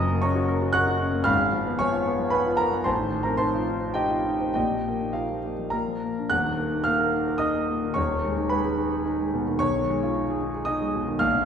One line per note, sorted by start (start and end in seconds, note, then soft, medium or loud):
0.00 1.24 F#1 medium
0.00 1.25 F#2 medium
0.00 1.31 C#3 medium
0.00 0.20 F#3 medium
0.00 0.21 D#5 medium
0.00 0.21 A#5 medium
0.00 0.23 D#6 loud
0.12 0.33 A#3 medium
0.22 0.45 C#4 medium
0.22 0.72 C#5 medium
0.22 0.72 A#5 medium
0.22 0.72 C#6 medium
0.35 0.58 F#4 medium
0.48 0.70 A#4 medium
0.62 0.84 F#4 medium
0.73 0.97 A#4 medium
0.73 1.24 F#5 medium
0.73 1.24 C#6 medium
0.73 1.27 F#6 loud
0.87 1.09 F#4 medium
1.00 1.22 C#4 medium
1.12 1.27 A#3 medium
1.24 2.82 G#1 medium
1.24 2.83 G#2 medium
1.24 1.76 F5 medium
1.24 1.76 B5 medium
1.24 1.79 F6 loud
1.39 1.62 G#3 medium
1.53 1.75 F3 medium
1.66 1.89 B3 medium
1.79 2.02 F3 medium
1.79 2.30 C#5 medium
1.79 2.30 G#5 medium
1.79 2.33 C#6 loud
1.92 2.15 F4 medium
2.07 2.28 B3 medium
2.19 2.41 F3 medium
2.30 2.55 B3 medium
2.30 2.58 B4 medium
2.30 2.58 G#5 medium
2.30 2.59 B5 medium
2.46 2.68 F4 medium
2.57 2.82 B3 medium
2.57 2.84 A#4 medium
2.57 2.86 A#5 loud
2.72 2.87 F3 medium
2.84 4.51 A1 medium
2.84 4.51 A2 medium
2.84 3.24 C5 medium
2.84 3.24 A5 medium
2.84 3.26 C6 medium
2.99 3.21 D#3 medium
3.11 3.34 F3 medium
3.23 3.48 C4 medium
3.23 3.39 A#4 medium
3.23 3.39 A#5 medium
3.37 3.62 D#4 medium
3.37 3.91 C5 medium
3.37 3.91 A5 medium
3.37 3.95 C6 loud
3.55 3.77 F4 medium
3.68 3.91 D#4 medium
3.81 4.04 C4 soft
3.94 4.20 D#4 medium
3.94 4.51 G4 medium
3.94 4.51 D#5 medium
3.94 4.52 G5 loud
4.10 4.34 F4 medium
4.25 4.50 D#4 medium
4.40 4.56 C4 medium
4.54 5.69 A#1 medium
4.54 5.70 A#2 medium
4.54 5.11 G4 medium
4.54 5.11 D#5 medium
4.54 5.14 G5 medium
4.72 4.95 F3 soft
4.88 5.10 A#3 medium
5.01 5.24 D#4 soft
5.13 5.38 A#3 medium
5.13 5.98 F4 soft
5.13 5.70 A#4 soft
5.13 6.01 F5 medium
5.31 5.53 F3 soft
5.45 5.68 A#3 soft
5.59 5.73 F3 soft
5.70 6.29 A#2 medium
5.70 6.26 A#4 medium
5.70 6.30 A#5 medium
5.88 6.11 F3 soft
6.03 6.26 A#3 soft
6.18 6.32 D4 soft
6.30 7.92 D#1 medium
6.30 7.93 D#2 medium
6.30 6.83 F#5 medium
6.30 6.87 F#6 loud
6.45 6.68 D#3 medium
6.58 6.81 A#3 medium
6.72 6.95 D#4 medium
6.84 7.09 A#3 medium
6.84 7.37 F5 medium
6.84 7.40 F6 loud
6.99 7.22 A#4 medium
7.13 7.36 D#4 medium
7.27 7.50 A#4 medium
7.38 7.63 D#4 medium
7.38 7.91 D#5 medium
7.38 7.95 D#6 medium
7.56 7.78 A#3 medium
7.70 7.92 A#2 medium
7.84 7.97 D#3 medium
7.94 9.56 D#1 medium
7.94 9.57 D#2 medium
7.94 8.47 C#5 medium
7.94 8.50 C#6 medium
8.11 8.32 D#3 medium
8.24 8.46 G#3 medium
8.37 8.59 D#4 medium
8.49 8.74 G#3 medium
8.49 9.02 B4 medium
8.49 9.05 B5 medium
8.65 8.87 G#4 medium
8.77 9.00 D#4 medium
8.92 9.14 G#4 medium
9.05 9.28 D#4 medium
9.20 9.42 G#3 medium
9.33 9.55 B2 medium
9.48 9.61 D#3 medium
9.59 11.16 B1 medium
9.59 10.63 C#5 medium
9.59 10.66 C#6 loud
9.76 9.97 D#3 medium
9.89 10.10 G#3 medium
10.03 10.23 F4 medium
10.16 10.36 D#4 medium
10.30 10.50 G#4 medium
10.42 10.62 D#4 medium
10.55 10.75 G#4 medium
10.65 10.88 D#4 medium
10.65 11.15 D#5 medium
10.65 11.18 D#6 loud
10.81 11.01 G#3 medium
10.95 11.15 B2 medium
11.08 11.20 D#3 medium
11.19 11.45 A#1 medium
11.19 11.45 F5 medium
11.19 11.45 F6 loud
11.35 11.45 D3 medium